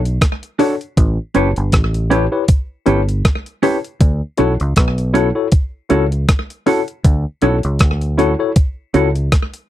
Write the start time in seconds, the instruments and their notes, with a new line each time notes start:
Already playing: fingered electric bass B1
0.05 closed hi-hat
0.21 kick, cross-stick, closed hi-hat
0.43 closed hi-hat
0.59 clean electric guitar D4 F#4 A4, tine electric piano D4 F#4 A4 C#5, open hi-hat
0.81 closed hi-hat
0.97 fingered electric bass A1, kick, closed hi-hat
1.35 fingered electric bass F#1, clean electric guitar C#4 G4 A4, tine electric piano E4 G4 B4 C#5, closed hi-hat
1.56 fingered electric bass G1, closed hi-hat
1.72 fingered electric bass A1, kick, cross-stick, closed hi-hat
1.94 closed hi-hat
2.10 clean electric guitar C#4 G4 A4, tine electric piano E4 G4 B4 C#5, closed hi-hat
2.32 tine electric piano E4 G4 B4 C#5
2.48 kick, closed hi-hat
2.86 fingered electric bass G1, clean electric guitar C#4 G4 A4, tine electric piano E4 G4 B4 C#5, closed hi-hat
3.09 closed hi-hat
3.25 kick, cross-stick, closed hi-hat
3.46 closed hi-hat
3.62 clean electric guitar C#4 G4 A4, tine electric piano E4 G4 B4 C#5, open hi-hat
3.84 closed hi-hat
4.01 fingered electric bass D2, kick, closed hi-hat
4.37 fingered electric bass B1, clean electric guitar C#4 F#4 A4, tine electric piano E4 F#4 A4 C#5, closed hi-hat
4.60 fingered electric bass C#2, closed hi-hat
4.76 fingered electric bass B1, kick, cross-stick, closed hi-hat
4.98 closed hi-hat
5.13 clean electric guitar C#4 F#4 A4, tine electric piano E4 F#4 A4 C#5, closed hi-hat
5.35 tine electric piano E4 F#4 A4 C#5
5.52 kick, closed hi-hat
5.89 fingered electric bass C#2, clean electric guitar C#4 F#4 A4, tine electric piano E4 F#4 A4 C#5, closed hi-hat
6.12 closed hi-hat
6.29 kick, cross-stick, closed hi-hat
6.50 closed hi-hat
6.66 clean electric guitar C#4 F#4 A4, tine electric piano E4 F#4 A4 C#5, open hi-hat
6.88 closed hi-hat
7.04 fingered electric bass D2, kick, closed hi-hat
7.42 fingered electric bass B1, clean electric guitar C#4 F#4 A4, tine electric piano E4 F#4 A4 C#5, closed hi-hat
7.63 fingered electric bass C#2, closed hi-hat
7.79 fingered electric bass D2, kick, cross-stick, closed hi-hat
8.01 closed hi-hat
8.18 clean electric guitar C#4 F#4 A4, tine electric piano E4 F#4 A4 C#5, closed hi-hat
8.39 tine electric piano E4 F#4 A4 C#5
8.56 kick, closed hi-hat
8.94 fingered electric bass C#2, clean electric guitar C#4 F#4 A4, tine electric piano E4 F#4 A4 C#5, closed hi-hat
9.15 closed hi-hat
9.32 kick, cross-stick, closed hi-hat
9.54 closed hi-hat